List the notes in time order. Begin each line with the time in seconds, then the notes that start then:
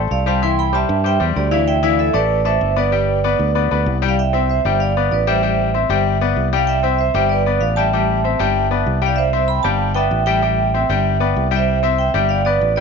Already playing: A3 A4 C5
0.11 C2 D5 F5
0.26 G3 G4 C5 F5 A5
0.42 E3 E4 E5 G5 C6
0.59 G5 B5
0.73 G3 G4 C5 E5 A5
0.89 G2
1.04 G3 G4 C5 E5 G5
1.20 E2 G3 G4 C5
1.36 D2 G4 D5
1.51 E3 E4 D5 E5 F5
1.68 E5 G5
1.83 E3 E4 D5 E5 F5
1.99 A4 E5
2.13 A1 A3 A4 B4 D5
2.45 A3 A4 C5 D5 E5
2.61 G1
2.76 B3 B4 D5
2.92 G3 G4 G5
3.24 B3 B4 D5
3.39 D2
3.55 B3 B4 D5
3.71 D2 B3 B4 D5
3.86 C2
4.02 G3 G4 G5
4.09 D5 F5
4.19 E5 G5
4.33 C4 C5 E5
4.50 C5 E5
4.65 G1 G3 G4 G5
4.80 D5 F5
4.97 B3 B4 D5
5.11 A1 B4 D5
5.27 G3 G4 C5 E5 G5
5.43 G3 G4 G5
5.74 C4 C5 E5
5.89 G1 G3 G4 G5
6.21 B3 B4 D5
6.36 C2
6.53 G3 G4 F5 G5
6.58 D5
6.67 E5 G5
6.83 C4 C5 E5
6.98 C5 E5
7.14 G1 G3 G4 G5
7.29 B4 D5
7.46 B3 B4 D5
7.61 A1 D5 F5
7.76 G3 G4 E5 G5 A5
7.93 G3 G4 G5
8.24 C4 C5 E5
8.39 G1 G3 G4 G5
8.71 B3 B4 D5
8.86 C2
9.02 G3 G4 G5
9.06 D5 F5
9.16 C5 E5
9.33 C4 C5 E5
9.48 G5 B5
9.63 G1 G3 G4 F5 G5 A5
9.95 B3 B4 D5 E5 G5
10.11 A1
10.26 G3 G4 E5 G5
10.42 G3 G4 G5
10.74 C4 C5 E5
10.89 G1 G3 G4 G5
11.20 B3 B4 D5
11.36 C2
11.51 G3 G4 G5
11.56 C5 E5
11.83 C4 C5 E5
11.99 E5 G5
12.14 G1 G3 G4 G5
12.29 D5 F5
12.45 B3 B4 D5
12.61 A1
12.76 G3 G4 D5